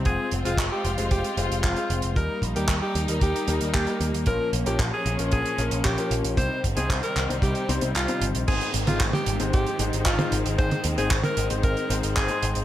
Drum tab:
CC |----------------|----------------|----------------|----------------|
HH |x-xxx-xxxxxxxxxx|x-xxx-xxxxxxxxxx|x-xxx-xxxxxxxxxx|x-xxxxxxxxxxxxxx|
CP |----x-------x---|----x-------x---|----x-------x---|----x-x-----x---|
T1 |----------------|----------------|----------------|----------------|
BD |o---o---o---o---|o-o-o---o---o---|o---o---o---o---|o-o-o---o-------|

CC |x---------------|----------------|
HH |xxxxxxxxxxxxxxxx|xxxxxxxxxxxxxxxx|
CP |----x-------x---|----x-------x---|
T1 |---o-o-------o--|-o---o----------|
BD |o---o---o---o---|o---o---o---o---|